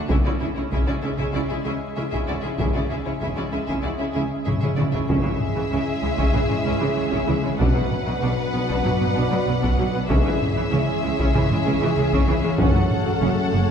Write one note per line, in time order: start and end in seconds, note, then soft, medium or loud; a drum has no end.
0.09 0.16 C#2 medium
0.09 0.16 C#3 medium
0.09 5.07 G#3 medium
0.09 5.07 C#4 medium
0.09 0.16 C#4 medium
0.09 0.16 E4 medium
0.09 5.07 G#4 medium
0.09 0.16 G#4 medium
0.09 5.07 E5 medium
0.09 0.16 E5 medium
0.09 taiko medium
0.25 0.31 C#3 soft
0.25 0.32 C#4 soft
0.25 0.32 E4 soft
0.25 0.31 F#4 soft
0.25 0.31 D5 soft
0.41 0.47 C#2 soft
0.41 0.47 C#3 soft
0.41 0.48 C#4 soft
0.41 0.48 E4 soft
0.41 0.47 G#4 soft
0.41 0.47 E5 soft
0.56 0.63 C#3 soft
0.56 0.63 C#4 soft
0.56 0.62 E4 soft
0.56 0.63 E4 soft
0.56 0.63 C#5 soft
0.72 0.78 C#2 medium
0.72 0.78 C#3 medium
0.72 0.79 C#4 medium
0.72 0.79 E4 medium
0.72 0.78 G#4 medium
0.72 0.78 E5 medium
0.72 taiko medium
0.87 0.94 C#3 soft
0.87 0.94 C#4 soft
0.87 0.94 E4 soft
0.87 0.93 F#4 soft
0.87 0.94 D5 soft
1.02 1.09 C#2 soft
1.02 1.09 C#3 soft
1.02 1.10 C#4 soft
1.02 1.10 E4 soft
1.02 1.09 G#4 soft
1.02 1.09 E5 soft
1.18 1.25 C#3 medium
1.18 1.26 C#4 medium
1.18 1.26 E4 medium
1.18 1.25 G#4 medium
1.18 1.25 E5 medium
1.18 taiko medium
1.34 1.41 C#2 soft
1.34 1.40 C#3 soft
1.34 1.41 C#4 soft
1.34 1.42 E4 soft
1.34 1.40 F#4 soft
1.34 1.41 D5 soft
1.50 1.56 C#3 soft
1.50 1.57 C#4 soft
1.50 1.57 E4 soft
1.50 1.56 G#4 soft
1.50 1.56 E5 soft
1.65 1.72 C#2 medium
1.65 1.71 C#3 medium
1.65 1.73 C#4 medium
1.65 1.73 E4 medium
1.65 1.71 G#4 medium
1.65 1.71 E5 medium
1.96 2.03 C#2 soft
1.96 2.03 C#3 soft
1.96 2.03 C#4 soft
1.96 2.03 E4 soft
1.96 2.03 G#4 soft
1.96 2.03 E5 soft
2.12 2.18 C#3 medium
2.12 2.20 C#4 medium
2.12 2.20 E4 soft
2.12 2.18 G#4 soft
2.12 2.18 E5 soft
2.12 taiko medium
2.27 2.34 C#2 soft
2.27 2.35 C#3 soft
2.27 2.35 C#4 soft
2.27 2.35 E4 soft
2.27 2.34 F#4 soft
2.27 2.34 D5 soft
2.42 2.50 C#3 soft
2.42 2.51 C#4 soft
2.42 2.51 E4 soft
2.42 2.49 G#4 soft
2.42 2.49 E5 soft
2.59 2.65 C#2 medium
2.59 2.66 C#3 medium
2.59 2.66 C#4 medium
2.59 2.66 E4 medium
2.59 2.65 G#4 soft
2.59 2.65 E5 soft
2.59 taiko medium
2.74 2.81 C#3 soft
2.74 2.82 C#4 soft
2.74 2.82 E4 soft
2.74 2.81 F#4 soft
2.74 2.81 D5 soft
2.90 2.97 C#2 soft
2.90 2.97 C#3 soft
2.90 2.97 C#4 soft
2.90 2.97 E4 soft
2.90 2.97 G#4 soft
2.90 2.97 E5 soft
3.06 3.12 C#3 soft
3.06 3.12 C#4 soft
3.06 3.12 E4 soft
3.06 3.12 C#5 soft
3.21 3.28 C#2 medium
3.21 3.28 C#3 medium
3.21 3.28 C#4 soft
3.21 3.28 E4 soft
3.21 3.28 G#4 soft
3.21 3.28 E5 soft
3.21 taiko medium
3.37 3.43 C#3 soft
3.37 3.44 C#4 soft
3.37 3.43 E4 soft
3.37 3.43 F#4 soft
3.37 3.43 D5 soft
3.52 3.59 C#2 soft
3.52 3.59 C#3 soft
3.52 3.60 C#4 soft
3.52 3.59 E4 soft
3.52 3.59 G#4 soft
3.52 3.58 E5 soft
3.67 3.75 C#3 soft
3.67 3.75 C#4 soft
3.67 3.75 E4 medium
3.67 3.74 G#4 medium
3.67 3.74 E5 soft
3.67 taiko medium
3.83 3.91 C#2 soft
3.83 3.91 C#3 soft
3.83 3.90 C#4 soft
3.83 3.90 E4 soft
3.83 3.89 F#4 soft
3.83 3.90 D5 soft
3.99 4.06 C#3 soft
3.99 4.06 C#4 soft
3.99 4.06 E4 soft
3.99 4.06 G#4 soft
3.99 4.06 E5 soft
4.14 4.22 C#2 soft
4.14 4.22 C#3 medium
4.14 4.21 C#4 medium
4.14 4.21 E4 soft
4.14 4.21 G#4 medium
4.14 4.21 E5 soft
4.45 4.53 C#2 soft
4.45 4.53 C#3 soft
4.45 4.53 C#4 soft
4.45 4.53 E4 soft
4.45 4.52 G#4 soft
4.45 4.52 E5 soft
4.45 taiko low-mid medium
4.61 4.68 C#3 medium
4.61 4.69 C#4 soft
4.61 4.69 E4 soft
4.61 4.68 G#4 soft
4.61 4.67 E5 soft
4.61 taiko mid medium
4.77 4.84 C#2 soft
4.77 4.84 C#3 soft
4.77 4.85 C#4 soft
4.77 4.85 E4 soft
4.77 4.84 F#4 soft
4.77 4.83 D5 soft
4.77 taiko mid medium
4.92 5.00 C#3 soft
4.92 5.01 C#4 soft
4.92 5.00 E4 soft
4.92 4.99 G#4 soft
4.92 4.99 E5 soft
4.92 taiko low medium
5.08 5.16 C#2 medium
5.08 7.55 C#3 medium
5.08 5.15 C#3 medium
5.08 7.55 G#3 medium
5.08 7.55 C#4 medium
5.08 5.16 C#4 medium
5.08 7.56 E4 medium
5.08 7.54 G#4 medium
5.08 7.55 G#4 medium
5.08 7.55 E5 medium
5.08 taiko medium
5.24 5.31 C#3 soft
5.24 5.31 E3 soft
5.40 taiko low-mid medium
5.56 5.62 C#3 soft
5.56 5.63 E3 soft
5.71 5.78 C#2 medium
5.71 5.78 C#3 medium
5.71 5.78 C#4 medium
6.03 6.09 C#2 medium
6.03 6.09 C#3 soft
6.03 6.09 G#3 medium
6.18 6.25 C#3 medium
6.18 6.25 C#4 medium
6.18 taiko medium
6.34 6.40 C#2 medium
6.34 6.40 C#3 medium
6.34 6.40 E3 medium
6.34 taiko low-mid medium
6.49 6.56 C#3 soft
6.49 6.56 G#3 medium
6.49 taiko low-mid soft
6.65 6.72 C#2 medium
6.65 6.71 C#3 medium
6.65 6.71 C#4 medium
6.81 6.88 C#3 medium
6.81 6.87 E3 soft
6.97 7.03 C#2 soft
6.97 7.03 C#3 medium
6.97 7.03 G#3 medium
7.12 7.19 C#3 medium
7.12 7.19 C#4 medium
7.12 taiko medium
7.28 7.34 C#2 soft
7.28 7.34 C#3 medium
7.28 7.34 E3 medium
7.43 7.51 C#3 medium
7.43 7.50 G#3 medium
7.59 7.66 B1 medium
7.59 10.05 B2 medium
7.59 7.66 B2 medium
7.59 10.10 F#3 medium
7.59 10.05 B3 medium
7.59 10.10 B3 medium
7.59 7.65 D4 medium
7.59 10.06 D4 medium
7.59 10.05 F#4 medium
7.59 10.09 B4 medium
7.59 10.10 B4 medium
7.59 10.09 D5 medium
7.59 10.05 F#5 medium
7.59 taiko loud
7.75 7.82 B2 medium
7.75 7.81 F#3 soft
7.91 taiko low-mid medium
8.06 8.13 B2 medium
8.06 8.12 F#3 soft
8.22 8.28 B1 medium
8.22 8.28 B2 medium
8.22 8.28 D4 medium
8.54 8.60 B1 medium
8.54 8.60 B2 medium
8.54 8.60 B3 medium
8.69 8.75 B2 medium
8.69 8.75 D4 medium
8.69 taiko medium
8.84 8.91 B1 medium
8.84 8.91 B2 medium
8.84 8.90 F#3 medium
8.84 taiko low-mid medium
9.00 9.07 B2 soft
9.00 9.06 B3 soft
9.00 taiko low-mid soft
9.16 9.22 B1 medium
9.16 9.22 B2 medium
9.16 9.22 D4 medium
9.31 9.38 B2 medium
9.31 9.37 F#3 medium
9.47 9.53 B1 medium
9.47 9.53 B2 medium
9.47 9.53 B3 medium
9.62 9.68 B2 medium
9.62 9.69 D4 medium
9.62 taiko medium
9.78 9.85 B1 medium
9.78 9.84 B2 medium
9.78 9.85 F#3 medium
9.94 10.01 B2 medium
9.94 10.00 B3 medium
10.09 10.16 C#2 medium
10.09 13.71 C#3 medium
10.09 10.16 C#3 medium
10.09 12.60 E3 medium
10.09 12.42 G#3 medium
10.09 10.16 C#4 medium
10.09 13.71 C#4 medium
10.09 12.56 E4 medium
10.09 12.56 G#4 medium
10.09 12.60 G#4 medium
10.09 13.71 C#5 medium
10.09 12.56 E5 medium
10.09 taiko loud
10.25 10.32 C#3 medium
10.25 10.32 E3 soft
10.42 taiko low-mid medium
10.56 10.63 C#3 medium
10.56 10.63 E3 medium
10.72 10.78 C#2 medium
10.72 10.78 C#3 medium
10.72 10.78 C#4 medium
11.03 11.10 C#2 medium
11.03 11.09 C#3 medium
11.03 11.10 G#3 medium
11.19 11.25 C#3 medium
11.19 11.26 C#4 medium
11.19 taiko medium
11.35 11.41 C#2 medium
11.35 11.41 C#3 medium
11.35 11.42 E3 medium
11.35 taiko low-mid medium
11.50 11.57 C#3 medium
11.50 11.57 G#3 medium
11.50 taiko low-mid soft
11.66 11.73 C#2 medium
11.66 11.72 C#3 medium
11.66 11.73 C#4 medium
11.82 11.88 C#3 medium
11.82 11.89 E3 medium
11.98 12.04 C#2 medium
11.98 12.04 C#3 medium
11.98 12.04 G#3 medium
12.13 12.19 C#3 medium
12.13 12.19 C#4 medium
12.13 taiko medium
12.28 12.35 C#2 medium
12.28 12.35 C#3 medium
12.28 12.34 E3 medium
12.43 12.50 C#3 medium
12.43 12.50 G#3 medium
12.59 12.66 F#1 medium
12.59 12.66 F#2 medium
12.59 13.71 F#3 medium
12.59 13.71 A3 medium
12.59 12.65 C#4 medium
12.59 13.71 F#4 medium
12.59 13.71 A4 medium
12.59 13.71 F#5 medium
12.59 taiko loud
12.75 12.82 F#2 medium
12.75 12.81 F#3 medium
12.91 taiko low-mid medium
13.06 13.12 F#2 medium
13.06 13.12 F#3 medium
13.21 13.29 F#1 medium
13.21 13.28 F#2 medium
13.21 13.28 C#4 medium
13.53 13.60 F#1 medium
13.53 13.59 F#2 medium
13.53 13.59 A3 medium